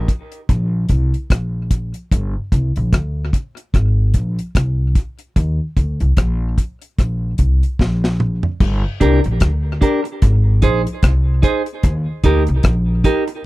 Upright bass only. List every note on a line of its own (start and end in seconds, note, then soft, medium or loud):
0.49 0.86 A#1 medium
0.90 1.11 C2 medium
1.31 1.91 A#1 medium
2.12 2.33 G1 medium
2.52 2.74 C2 medium
2.77 2.92 A#1 medium
2.93 3.30 D2 medium
3.75 4.11 G#1 medium
4.15 4.36 A#1 medium
4.56 4.92 C2 medium
5.37 5.58 D#2 medium
5.77 5.98 D2 medium
6.01 6.16 C2 medium
6.17 6.54 A#1 medium
6.99 7.35 A#1 medium
7.39 7.60 C2 medium
7.80 8.40 A#1 medium
8.61 8.82 G1 loud
9.01 9.22 C2 medium
9.26 9.40 A#1 medium
9.42 9.78 D2 medium
10.22 10.59 G#1 loud
10.63 10.84 A#1 medium
11.03 11.39 C2 medium
11.84 12.05 D#2 loud
12.24 12.45 D2 medium
12.49 12.63 C2 medium
12.65 13.01 A#1 medium